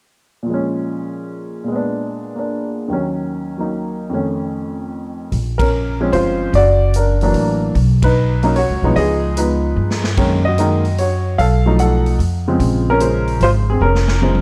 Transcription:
0.43 1.63 A#2 soft
0.43 1.68 F3 soft
0.50 1.67 G#3 soft
0.50 1.72 C#4 soft
1.64 2.88 A#2 soft
1.64 2.90 G#3 soft
1.72 2.92 B3 soft
1.72 2.37 D4 soft
2.35 2.90 A#3 soft
2.35 2.91 D4 soft
2.88 4.10 D#2 soft
2.88 4.09 D#3 soft
2.88 3.56 F#3 soft
2.93 4.13 C#4 soft
3.58 4.11 F#3 soft
3.58 4.12 A#3 soft
3.58 4.13 D#4 soft
4.10 5.32 F2 soft
4.10 5.33 D#3 soft
4.10 5.33 A3 soft
4.14 5.34 C#4 soft
5.32 6.09 A#1 medium
5.32 kick soft
5.32 open hi-hat soft
5.58 5.98 C#4 soft
5.58 5.97 A#4 medium
5.58 kick medium
5.58 ride medium
6.00 6.51 F3 soft
6.00 6.52 G#3 soft
6.00 6.52 C4 soft
6.00 6.52 C#4 medium
6.12 6.50 G1 medium
6.12 6.52 F4 medium
6.12 6.51 C5 medium
6.12 open hi-hat soft
6.53 7.30 F#1 medium
6.53 6.93 F#4 medium
6.53 6.92 D5 medium
6.53 kick soft
6.53 open hi-hat soft
6.94 7.59 A#4 medium
6.94 closed hi-hat soft
6.98 7.22 D4 soft
7.21 7.73 E3 medium
7.21 7.73 F#3 medium
7.21 7.73 A#3 medium
7.21 7.74 D4 medium
7.21 open hi-hat soft
7.34 7.72 A1 medium
7.34 open hi-hat soft
7.75 8.65 B1 medium
7.75 kick soft
7.75 open hi-hat soft
8.02 8.41 D#4 medium
8.02 8.41 B4 medium
8.02 kick medium
8.02 ride medium
8.43 8.55 F#3 medium
8.43 8.55 A#3 medium
8.43 8.55 C#4 medium
8.43 8.55 D#4 medium
8.43 open hi-hat soft
8.56 8.95 F#4 medium
8.56 8.98 C#5 medium
8.56 open hi-hat soft
8.69 8.82 C#2 medium
8.82 8.95 B1 medium
8.82 9.35 F3 medium
8.82 9.35 G#3 medium
8.82 9.35 B3 medium
8.82 9.35 D#4 medium
8.96 9.73 C#2 medium
8.96 9.35 G#4 medium
8.96 9.38 D#5 medium
8.96 kick soft
8.96 open hi-hat soft
9.37 10.00 F3 medium
9.37 10.00 G#3 soft
9.37 10.00 B3 soft
9.37 10.00 D#4 medium
9.37 10.01 B4 medium
9.37 closed hi-hat soft
9.76 10.14 G2 medium
9.90 snare soft
10.04 snare medium
10.17 11.35 F#2 medium
10.17 10.42 D#3 medium
10.17 10.42 G#3 soft
10.17 10.42 A#3 soft
10.17 10.43 C#4 medium
10.17 kick medium
10.17 ride medium
10.45 10.96 F#4 medium
10.45 10.95 D#5 medium
10.58 10.83 D#3 soft
10.58 10.83 G#3 soft
10.58 10.83 A#3 soft
10.58 10.83 D#4 medium
10.58 closed hi-hat soft
10.85 open hi-hat soft
10.98 11.37 F#4 medium
10.98 11.40 C#5 medium
10.98 open hi-hat soft
11.38 12.15 B1 medium
11.38 11.77 A4 medium
11.38 11.80 F5 medium
11.38 kick soft
11.38 open hi-hat soft
11.66 12.17 F3 medium
11.66 12.17 F#3 medium
11.66 12.17 A3 medium
11.66 12.18 D#4 medium
11.79 12.18 A4 medium
11.79 12.17 F#5 medium
11.79 closed hi-hat soft
12.06 open hi-hat soft
12.19 12.57 F2 medium
12.19 open hi-hat soft
12.48 12.98 C#3 medium
12.48 12.98 F3 medium
12.48 12.98 G#3 medium
12.48 12.99 C4 medium
12.60 13.36 A#1 medium
12.60 kick soft
12.60 open hi-hat soft
12.90 13.39 C#4 medium
12.90 13.38 A#4 medium
13.00 13.62 C#3 soft
13.00 13.63 F3 soft
13.00 13.63 G#3 soft
13.00 13.41 C5 medium
13.00 closed hi-hat soft
13.27 open hi-hat soft
13.41 13.78 G#1 medium
13.41 13.50 F4 medium
13.41 13.49 C5 loud
13.41 open hi-hat soft
13.70 13.82 C4 medium
13.70 13.82 G#4 medium
13.81 14.41 F1 medium
13.81 14.41 C#4 medium
13.81 14.41 A#4 medium
13.95 snare soft
14.08 snare medium
14.21 14.41 C#3 soft
14.21 14.41 F3 soft
14.21 14.41 G#3 soft
14.21 14.41 C5 soft
14.21 high tom soft
14.35 high tom medium

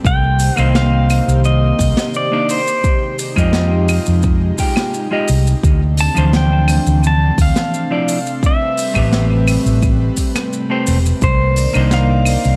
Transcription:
0.03 0.49 C2 loud
0.03 2.81 C3 medium
0.03 2.81 D#3 medium
0.03 2.81 A#3 medium
0.03 5.59 G4 medium
0.03 2.80 C5 medium
0.03 0.60 G5 loud
0.03 kick loud
0.03 shaker soft
0.39 open hi-hat loud
0.39 shaker medium
0.56 1.19 C2 loud
0.56 2.27 A#3 medium
0.56 2.28 C4 medium
0.56 2.28 D#4 medium
0.56 2.29 C5 medium
0.56 0.76 F5 loud
0.56 claves medium
0.56 shaker medium
0.75 1.41 F5 loud
0.75 snare medium
0.75 shaker soft
1.10 open hi-hat loud
1.10 claves medium
1.10 shaker medium
1.28 1.71 C2 medium
1.28 shaker medium
1.44 2.16 D#5 loud
1.44 shaker soft
1.79 1.92 C2 medium
1.79 kick loud
1.79 open hi-hat medium
1.79 shaker medium
1.97 snare medium
1.97 shaker medium
2.14 2.51 D5 medium
2.14 shaker medium
2.32 2.59 A#3 medium
2.32 2.60 D4 medium
2.32 2.60 D#4 medium
2.32 2.60 D5 medium
2.49 3.16 C5 medium
2.49 open hi-hat medium
2.49 shaker medium
2.68 shaker medium
2.83 12.56 C3 medium
2.83 5.60 G#3 medium
2.83 5.60 D#4 medium
2.83 kick loud
2.83 shaker soft
3.19 open hi-hat medium
3.19 shaker loud
3.36 3.98 F2 medium
3.36 4.55 G#3 medium
3.36 4.55 F4 medium
3.36 4.56 G4 medium
3.36 4.56 D#5 medium
3.36 kick medium
3.36 claves medium
3.36 shaker medium
3.53 snare medium
3.53 shaker soft
3.88 open hi-hat loud
3.88 claves medium
3.88 shaker medium
4.06 4.51 F2 medium
4.06 shaker medium
4.22 kick loud
4.22 shaker medium
4.58 5.07 G#3 medium
4.58 5.07 F4 medium
4.58 5.08 G4 medium
4.58 5.08 G5 medium
4.58 kick medium
4.58 open hi-hat medium
4.58 shaker medium
4.76 snare medium
4.76 claves medium
4.76 shaker medium
4.94 shaker soft
5.11 5.28 G#3 medium
5.11 5.28 F4 medium
5.11 5.28 G4 medium
5.11 5.29 D#5 medium
5.28 5.53 C2 medium
5.28 open hi-hat loud
5.28 shaker medium
5.47 shaker medium
5.63 6.07 D2 loud
5.63 11.18 A3 medium
5.63 11.17 C4 loud
5.63 8.40 D4 medium
5.63 kick loud
5.63 shaker soft
5.97 6.32 A5 loud
5.97 open hi-hat loud
5.97 shaker medium
6.15 6.77 D2 medium
6.15 7.87 E3 medium
6.15 7.86 F3 medium
6.15 7.86 D4 medium
6.15 7.87 C5 loud
6.15 claves medium
6.15 shaker medium
6.33 7.06 G5 medium
6.33 snare medium
6.33 shaker soft
6.68 open hi-hat loud
6.68 claves medium
6.68 shaker loud
6.86 7.30 D2 medium
6.86 shaker medium
7.04 7.37 A5 loud
7.04 shaker medium
7.38 7.50 D2 medium
7.38 8.46 F5 loud
7.38 kick loud
7.38 open hi-hat medium
7.38 shaker medium
7.56 snare medium
7.56 shaker medium
7.74 shaker medium
7.91 8.18 F3 medium
7.91 8.18 D4 medium
7.91 8.18 E4 medium
7.91 8.19 D5 medium
8.08 open hi-hat loud
8.08 shaker loud
8.27 shaker medium
8.43 11.19 G3 medium
8.43 11.19 B4 medium
8.43 9.80 E5 medium
8.43 kick loud
8.43 shaker soft
8.77 open hi-hat loud
8.77 shaker medium
8.94 9.56 A1 loud
8.94 10.65 A3 medium
8.94 10.65 C4 medium
8.94 10.66 G4 medium
8.94 10.66 B4 loud
8.94 kick medium
8.94 claves medium
8.94 shaker medium
9.12 snare medium
9.12 shaker soft
9.48 open hi-hat loud
9.48 claves medium
9.48 shaker medium
9.66 10.09 A1 medium
9.66 shaker medium
9.83 kick medium
9.83 shaker soft
10.17 kick medium
10.17 open hi-hat loud
10.17 shaker medium
10.35 snare medium
10.35 claves medium
10.35 shaker medium
10.53 shaker medium
10.70 10.97 A3 medium
10.70 10.97 C4 medium
10.70 10.97 G4 medium
10.70 10.98 C5 loud
10.87 11.11 E1 medium
10.87 open hi-hat medium
10.87 shaker medium
11.06 shaker medium
11.21 11.66 C2 loud
11.21 12.56 D#3 medium
11.21 12.56 A#3 medium
11.21 12.56 A#4 medium
11.21 11.94 C5 medium
11.21 12.56 D5 medium
11.21 kick loud
11.21 shaker medium
11.56 open hi-hat loud
11.56 shaker medium
11.73 12.35 C2 loud
11.73 12.56 A#3 medium
11.73 12.56 D4 medium
11.73 12.56 D#4 medium
11.73 12.56 C5 loud
11.73 claves medium
11.73 shaker medium
11.91 12.56 F5 loud
11.91 snare medium
11.91 shaker soft
12.25 open hi-hat loud
12.25 claves medium
12.25 shaker loud
12.44 12.56 C2 medium
12.44 shaker medium

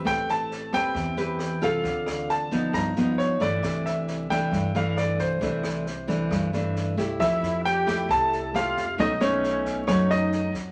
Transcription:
0.00 0.69 C4 soft
0.00 0.69 G4 medium
0.00 0.69 B4 medium
0.05 0.15 A1 medium
0.05 0.92 A3 medium
0.05 0.29 G5 medium
0.05 kick medium
0.05 cross-stick medium
0.05 snare soft
0.27 0.90 A1 medium
0.27 0.75 A5 medium
0.27 snare soft
0.51 snare soft
0.72 1.14 C4 medium
0.72 1.14 G4 medium
0.72 1.14 B4 medium
0.72 1.65 G5 medium
0.72 kick soft
0.72 cross-stick medium
0.72 snare soft
0.94 1.57 E2 medium
0.94 1.82 E3 medium
0.94 kick medium
0.94 snare soft
1.17 1.58 C4 medium
1.17 1.58 G4 medium
1.17 1.58 B4 medium
1.17 snare soft
1.39 cross-stick soft
1.39 snare soft
1.61 1.82 C2 medium
1.61 2.47 C4 medium
1.61 2.47 F4 medium
1.61 2.48 A4 medium
1.61 2.32 F5 medium
1.61 kick soft
1.61 snare soft
1.83 1.94 D2 medium
1.83 2.71 D3 medium
1.83 kick medium
1.83 snare soft
2.06 2.69 D2 medium
2.06 cross-stick medium
2.06 snare soft
2.29 2.75 A5 medium
2.29 snare soft
2.51 2.92 F3 medium
2.51 2.92 B3 medium
2.51 2.93 D#4 medium
2.51 kick soft
2.51 snare soft
2.73 3.36 G1 loud
2.73 3.61 G2 soft
2.73 3.20 A#5 medium
2.73 kick medium
2.73 cross-stick medium
2.73 snare soft
2.96 3.37 F3 medium
2.96 3.37 B3 medium
2.96 3.38 D#4 medium
2.96 snare soft
3.18 3.41 C#5 medium
3.18 snare soft
3.40 3.61 G1 medium
3.40 4.26 E3 medium
3.40 4.26 A3 medium
3.40 4.27 D4 medium
3.40 3.87 D5 medium
3.40 kick soft
3.40 snare soft
3.62 3.73 C2 medium
3.62 4.50 C3 medium
3.62 kick medium
3.62 cross-stick medium
3.62 snare soft
3.84 4.47 C2 medium
3.84 4.31 E5 medium
3.84 snare soft
4.07 snare soft
4.30 4.71 E3 medium
4.30 4.71 A3 medium
4.30 4.71 D4 medium
4.30 4.76 G5 medium
4.30 kick soft
4.30 cross-stick medium
4.30 snare soft
4.51 5.39 G2 soft
4.51 5.15 G2 medium
4.51 kick medium
4.51 snare soft
4.75 5.38 E3 medium
4.75 5.38 A3 medium
4.75 5.38 D4 medium
4.75 4.98 F5 medium
4.75 snare soft
4.97 5.20 D5 medium
4.97 cross-stick medium
4.97 snare soft
5.18 5.39 C2 medium
5.18 6.72 C5 medium
5.18 kick soft
5.18 snare soft
5.41 5.51 C2 medium
5.41 6.28 C3 medium
5.41 5.85 E3 medium
5.41 5.86 A3 medium
5.41 5.86 D4 medium
5.41 kick medium
5.41 snare soft
5.63 6.26 C2 medium
5.63 cross-stick medium
5.63 snare soft
5.86 snare soft
6.08 6.49 E3 medium
6.08 6.49 A3 medium
6.08 6.49 D4 medium
6.08 kick soft
6.08 snare soft
6.30 6.93 G2 loud
6.30 7.18 G2 medium
6.30 kick medium
6.30 cross-stick medium
6.30 snare soft
6.53 6.94 E3 medium
6.53 6.95 A3 medium
6.53 6.94 D4 medium
6.53 snare soft
6.76 snare soft
6.97 7.18 C2 medium
6.97 7.63 A3 medium
6.97 7.63 E4 medium
6.97 7.63 G4 medium
6.97 kick soft
6.97 snare soft
7.17 7.41 F2 loud
7.17 8.07 F3 medium
7.17 7.60 E4 medium
7.17 7.66 E5 medium
7.17 kick medium
7.17 cross-stick medium
7.17 snare soft
7.42 8.05 F2 medium
7.42 snare soft
7.63 8.05 G4 medium
7.63 8.11 G5 loud
7.63 snare soft
7.86 8.50 A3 medium
7.86 8.50 E4 medium
7.86 8.50 G4 medium
7.86 kick soft
7.86 cross-stick medium
7.86 snare soft
8.08 8.72 C2 loud
8.08 8.96 C3 medium
8.08 8.50 A4 medium
8.08 8.56 A5 medium
8.08 kick medium
8.08 snare soft
8.32 snare soft
8.54 8.84 A3 medium
8.54 8.95 F4 medium
8.54 8.84 G4 medium
8.54 8.96 F5 medium
8.54 cross-stick medium
8.54 snare soft
8.76 8.97 F2 medium
8.76 kick soft
8.76 snare soft
8.97 9.19 B1 medium
8.97 9.85 B2 medium
8.97 9.12 A3 medium
8.97 9.12 C#4 medium
8.97 9.19 D#4 medium
8.97 9.12 D#4 medium
8.97 9.22 D#5 medium
8.97 kick medium
8.97 snare soft
9.19 9.83 B1 medium
9.19 9.84 A3 medium
9.19 9.83 C#4 medium
9.19 9.84 C#4 medium
9.19 9.84 D#4 medium
9.19 9.86 C#5 medium
9.19 cross-stick medium
9.19 snare soft
9.43 snare soft
9.65 kick soft
9.65 snare soft
9.86 10.50 F#2 loud
9.86 10.72 F#3 medium
9.86 10.47 A3 soft
9.86 10.08 C#4 medium
9.86 10.47 C#4 medium
9.86 10.48 D#4 medium
9.86 10.10 C#5 medium
9.86 kick medium
9.86 cross-stick medium
9.86 snare soft
10.08 10.50 D#4 medium
10.08 10.52 D#5 medium
10.08 snare soft
10.32 snare soft
10.54 10.72 F2 medium
10.54 kick soft
10.54 snare soft

